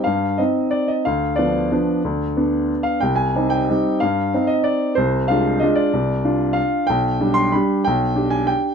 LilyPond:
\new Staff \with { instrumentName = "Grand piano" } { \time 3/4 \key c \minor \tempo 4 = 186 << { f''4 ees''4 d''8 ees''8 | f''4 d''2~ | d''2~ d''8 f''8 | g''8 aes''4 g''4. |
f''4. ees''8 d''4 | c''4 f''4 ees''8 d''8~ | d''2 f''4 | g''4. c'''8 b''4 |
g''4. aes''8 g''4 | } \\ { g,4 <c' ees'>2 | d,4 <f b d'>4 <f b d'>4 | d,4 <b d'>2 | c,4 <g c' ees'>4 <g c' ees'>4 |
g,4 <c' ees'>2 | c,4 <aes d' f'>4 <aes d' f'>4 | c,4 <d' f'>2 | b,,4 <g d' g'>4 <g d' g'>4 |
b,,4 <d' g'>2 | } >> }